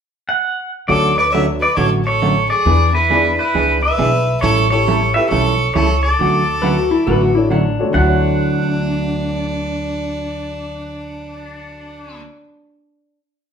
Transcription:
0.29 F#5
0.88 D2 D3 F#3 A3 C#4 D4 F#4 A4 C#5 D5
1.17 B4 D5
1.31 D3 F#3 A3 C#4 D4 F#4 A4 B4 C#5 E5
1.60 B4 D5
1.76 A1 D3 F#3 A3 C#4 F#4 A4 C#5
2.04 A4 C#5
2.22 D3 F#3 A3 C#4 F#4
2.49 G#4 D5
2.66 E2 E3 B3 D4 E4 G#4 B4
2.94 E4 B4
3.09 E3 B3 D4 E4 G#4 D5
3.38 E4 B4
3.54 C#2 E3 B3 D4 G#4
3.82 B4 E5
3.98 B1 E3 B3 D4 G#4
4.41 A1 E3 G3 C#4 E4 A4 C#5
4.70 E4 G4 A4 C#5
4.88 E3 G3 C#4 E4 A4
5.14 E4 G4 A4 B4 E5
5.29 B1 E3 G3 C#4 E4 A4 C#5
5.74 C#2 E3 G3 C#4 E4 A4 C#5
6.03 A4 D5
6.19 D2 D3 F#3 A3 C#4 F#4
6.62 D3 F#3 A3 C#4 F#4 B4
6.76 F#4
6.91 E4
7.07 A1 D3 F#3 A3 C#4 F#4 B4
7.21 F#4
7.35 D4 E4 F#4 A4 C#5
7.50 D3 F#3 A3 C#4 D4 F#4
7.79 D4 F#4 A4 C#5
7.83 D2
7.89 D3
7.94 D2 D3 F#3 A3 D4 E4 F#4 F#5
8.01 F#4
8.08 C#5

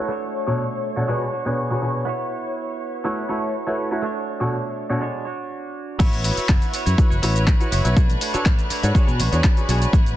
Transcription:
Already playing: F#4 C#5
0.08 A3 D4 F#4
0.12 C#5
0.47 B2 D4 F#4 A4 C#5
0.96 B2 D4 F#4 A4 C#5
1.07 B2 G#3 D4 F#4 G#4 B4 C#5
1.32 D4 F#4 C#5
1.45 B2 D4 F#4 G#4 B4 C#5
1.70 B2 D4 F#4 G#4 B4 C#5
1.82 B2 D4 F#4 G#4 B4 C#5
2.05 B3 E4 F#4
2.09 C#5
3.04 A3 B3 E4 F#4 B4 C#5
3.28 A3 E4 F#4 B4 C#5
3.67 A3 E4 F#4 B4 C#5
3.91 A3 E4 F#4 B4 C#5
4.02 A3 D4 F#4
4.06 C#5
4.40 B2 D4 F#4 A4 C#5
4.89 B2 D4 F#4 A4 C#5
5.01 G#3 D4 F#4 C#5
5.25 D4 F#4 C#5
5.99 A1 B3 E4 F#4 B4 C#5, kick, closed hi-hat, crash, shaker
6.13 closed hi-hat, shaker
6.24 B3 E4 F#4 C#5, open hi-hat, shaker
6.37 E4 F#4 C#5, muted fingered electric bass stroke, closed hi-hat, shaker
6.48 F#1 B3 E4 F#4, kick, clap, closed hi-hat, shaker
6.62 closed hi-hat, shaker
6.73 B3 E4 F#4 C#5, open hi-hat, shaker
6.86 F#2 E4 F#4 C#5, closed hi-hat, shaker
6.98 E4 F#4 B4 C#5, muted fingered electric bass stroke, kick, closed hi-hat, shaker
7.10 F#1 E4 F#4 C#5, shaker
7.22 A1 B3 E4 F#4 B4 C#5, open hi-hat, shaker
7.35 E4 F#4 C#5, closed hi-hat, shaker
7.47 kick, clap, closed hi-hat, shaker
7.60 E4 F#4 B4 C#5, closed hi-hat, shaker
7.71 F#1 B3 E4 F#4 C#5, open hi-hat, shaker
7.84 B1 E4 F#4 B4 C#5, closed hi-hat, shaker
7.96 A3 D4 F#4 C#5, kick, closed hi-hat, shaker
8.10 closed hi-hat, shaker
8.20 A3 D4 F#4 C#5, open hi-hat, shaker
8.33 D4 F#4 A4 C#5, muted fingered electric bass stroke, closed hi-hat, shaker
8.45 A1 A3 F#4, kick, clap, closed hi-hat, shaker
8.59 closed hi-hat, shaker
8.69 A3 D4 F#4 C#5, muted fingered electric bass stroke, open hi-hat, shaker
8.83 G#2 D4 F#4 A4 C#5, closed hi-hat, shaker
8.94 G#3 D4 F#4 G#4 C#5, kick, closed hi-hat, shaker
9.07 B2 D4 F#4 C#5, shaker
9.19 B1 G#3 D4 F#4 C#5, open hi-hat, shaker
9.32 E2 D4 F#4 G#4 C#5, closed hi-hat, shaker
9.44 kick, clap, closed hi-hat, shaker
9.57 D4 F#4 G#4 C#5, closed hi-hat, shaker
9.68 B1 G#3 D4 F#4 G#4 C#5, open hi-hat, shaker
9.82 closed hi-hat, shaker
9.93 A1 B3 E4 F#4 C#5, kick, closed hi-hat, shaker
10.06 closed hi-hat, shaker

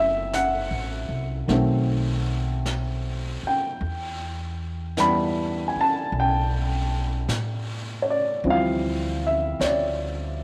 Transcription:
Already playing: F#1 E3 F#3 A3 C4 E5
0.33 F#5, brush sweep, snare, hi-hat pedal
0.71 A1
1.09 C2
1.47 B1 D#3 F#3 A3, brush sweep, snare
1.52 C4
2.66 brush sweep, snare, hi-hat pedal
3.43 muted upright bass stroke
3.47 G5
3.81 E2, brush sweep
4.97 E3 G3 B3 D4 B5, brush sweep, snare, hi-hat pedal
5.68 G#5
5.76 muted upright bass stroke
5.81 A5
6.12 B1, brush sweep
6.20 G5
7.28 A2, brush sweep, snare, hi-hat pedal
8.02 C#5
8.10 D5
8.44 D2 E3 F3 G3 C4, brush sweep
8.50 F5
9.27 E5
9.60 D2 C#5, brush sweep, snare, hi-hat pedal
9.65 D5

